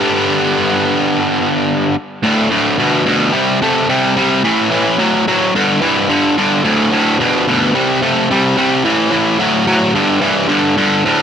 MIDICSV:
0, 0, Header, 1, 2, 480
1, 0, Start_track
1, 0, Tempo, 550964
1, 36, Time_signature, 4, 2, 24, 8
1, 9776, End_track
2, 0, Start_track
2, 0, Title_t, "Distorted electric guitar"
2, 0, Program_c, 0, 30
2, 0, Note_on_c, 0, 43, 83
2, 0, Note_on_c, 0, 50, 84
2, 0, Note_on_c, 0, 55, 84
2, 0, Note_on_c, 0, 59, 94
2, 0, Note_on_c, 0, 62, 86
2, 0, Note_on_c, 0, 67, 98
2, 1692, Note_off_c, 0, 43, 0
2, 1696, Note_off_c, 0, 50, 0
2, 1699, Note_off_c, 0, 55, 0
2, 1701, Note_off_c, 0, 59, 0
2, 1703, Note_off_c, 0, 62, 0
2, 1707, Note_off_c, 0, 67, 0
2, 1948, Note_on_c, 0, 38, 75
2, 1952, Note_on_c, 0, 45, 78
2, 2165, Note_off_c, 0, 38, 0
2, 2167, Note_off_c, 0, 45, 0
2, 2185, Note_on_c, 0, 38, 77
2, 2189, Note_on_c, 0, 45, 76
2, 2404, Note_off_c, 0, 38, 0
2, 2406, Note_off_c, 0, 45, 0
2, 2424, Note_on_c, 0, 38, 76
2, 2428, Note_on_c, 0, 47, 79
2, 2643, Note_off_c, 0, 38, 0
2, 2645, Note_off_c, 0, 47, 0
2, 2666, Note_on_c, 0, 38, 67
2, 2666, Note_on_c, 0, 47, 72
2, 2884, Note_off_c, 0, 47, 0
2, 2885, Note_off_c, 0, 38, 0
2, 2901, Note_on_c, 0, 48, 78
2, 2906, Note_on_c, 0, 55, 80
2, 3122, Note_off_c, 0, 48, 0
2, 3125, Note_off_c, 0, 55, 0
2, 3152, Note_on_c, 0, 48, 79
2, 3158, Note_on_c, 0, 57, 76
2, 3368, Note_off_c, 0, 48, 0
2, 3371, Note_off_c, 0, 57, 0
2, 3391, Note_on_c, 0, 48, 82
2, 3396, Note_on_c, 0, 55, 89
2, 3607, Note_off_c, 0, 48, 0
2, 3610, Note_off_c, 0, 55, 0
2, 3626, Note_on_c, 0, 48, 60
2, 3631, Note_on_c, 0, 55, 80
2, 3845, Note_off_c, 0, 48, 0
2, 3847, Note_off_c, 0, 55, 0
2, 3869, Note_on_c, 0, 45, 89
2, 3871, Note_on_c, 0, 52, 89
2, 4087, Note_off_c, 0, 45, 0
2, 4088, Note_off_c, 0, 52, 0
2, 4105, Note_on_c, 0, 45, 79
2, 4106, Note_on_c, 0, 52, 82
2, 4325, Note_off_c, 0, 45, 0
2, 4325, Note_off_c, 0, 52, 0
2, 4345, Note_on_c, 0, 45, 76
2, 4351, Note_on_c, 0, 54, 80
2, 4565, Note_off_c, 0, 45, 0
2, 4568, Note_off_c, 0, 54, 0
2, 4596, Note_on_c, 0, 45, 60
2, 4602, Note_on_c, 0, 54, 74
2, 4811, Note_off_c, 0, 45, 0
2, 4814, Note_off_c, 0, 54, 0
2, 4836, Note_on_c, 0, 43, 91
2, 4837, Note_on_c, 0, 50, 91
2, 5051, Note_off_c, 0, 43, 0
2, 5051, Note_off_c, 0, 50, 0
2, 5066, Note_on_c, 0, 52, 92
2, 5067, Note_on_c, 0, 43, 80
2, 5286, Note_off_c, 0, 43, 0
2, 5286, Note_off_c, 0, 52, 0
2, 5302, Note_on_c, 0, 43, 77
2, 5310, Note_on_c, 0, 50, 91
2, 5524, Note_off_c, 0, 43, 0
2, 5528, Note_off_c, 0, 50, 0
2, 5553, Note_on_c, 0, 43, 74
2, 5561, Note_on_c, 0, 50, 71
2, 5770, Note_off_c, 0, 43, 0
2, 5774, Note_off_c, 0, 50, 0
2, 5784, Note_on_c, 0, 38, 83
2, 5792, Note_on_c, 0, 45, 81
2, 6006, Note_off_c, 0, 38, 0
2, 6009, Note_off_c, 0, 45, 0
2, 6024, Note_on_c, 0, 38, 75
2, 6029, Note_on_c, 0, 45, 94
2, 6245, Note_off_c, 0, 38, 0
2, 6248, Note_off_c, 0, 45, 0
2, 6270, Note_on_c, 0, 38, 67
2, 6274, Note_on_c, 0, 47, 86
2, 6488, Note_off_c, 0, 38, 0
2, 6491, Note_off_c, 0, 47, 0
2, 6512, Note_on_c, 0, 38, 75
2, 6514, Note_on_c, 0, 47, 77
2, 6729, Note_off_c, 0, 38, 0
2, 6731, Note_off_c, 0, 47, 0
2, 6749, Note_on_c, 0, 48, 81
2, 6750, Note_on_c, 0, 55, 84
2, 6968, Note_off_c, 0, 48, 0
2, 6969, Note_off_c, 0, 55, 0
2, 6988, Note_on_c, 0, 48, 75
2, 6990, Note_on_c, 0, 57, 87
2, 7208, Note_off_c, 0, 48, 0
2, 7209, Note_off_c, 0, 57, 0
2, 7235, Note_on_c, 0, 48, 81
2, 7243, Note_on_c, 0, 55, 85
2, 7451, Note_off_c, 0, 48, 0
2, 7455, Note_off_c, 0, 55, 0
2, 7467, Note_on_c, 0, 48, 73
2, 7478, Note_on_c, 0, 55, 72
2, 7687, Note_off_c, 0, 48, 0
2, 7693, Note_off_c, 0, 55, 0
2, 7706, Note_on_c, 0, 45, 75
2, 7709, Note_on_c, 0, 52, 93
2, 7925, Note_off_c, 0, 45, 0
2, 7928, Note_off_c, 0, 52, 0
2, 7935, Note_on_c, 0, 45, 82
2, 7943, Note_on_c, 0, 52, 83
2, 8161, Note_off_c, 0, 45, 0
2, 8165, Note_off_c, 0, 52, 0
2, 8178, Note_on_c, 0, 45, 75
2, 8185, Note_on_c, 0, 54, 76
2, 8403, Note_off_c, 0, 45, 0
2, 8406, Note_off_c, 0, 54, 0
2, 8424, Note_on_c, 0, 45, 69
2, 8424, Note_on_c, 0, 54, 73
2, 8645, Note_off_c, 0, 45, 0
2, 8646, Note_off_c, 0, 54, 0
2, 8666, Note_on_c, 0, 43, 74
2, 8669, Note_on_c, 0, 50, 82
2, 8884, Note_off_c, 0, 43, 0
2, 8887, Note_off_c, 0, 50, 0
2, 8894, Note_on_c, 0, 43, 70
2, 8900, Note_on_c, 0, 52, 90
2, 9120, Note_off_c, 0, 43, 0
2, 9123, Note_off_c, 0, 52, 0
2, 9136, Note_on_c, 0, 43, 75
2, 9136, Note_on_c, 0, 50, 84
2, 9361, Note_off_c, 0, 43, 0
2, 9361, Note_off_c, 0, 50, 0
2, 9383, Note_on_c, 0, 43, 74
2, 9390, Note_on_c, 0, 50, 74
2, 9604, Note_off_c, 0, 43, 0
2, 9608, Note_off_c, 0, 50, 0
2, 9626, Note_on_c, 0, 38, 81
2, 9632, Note_on_c, 0, 45, 93
2, 9776, Note_off_c, 0, 38, 0
2, 9776, Note_off_c, 0, 45, 0
2, 9776, End_track
0, 0, End_of_file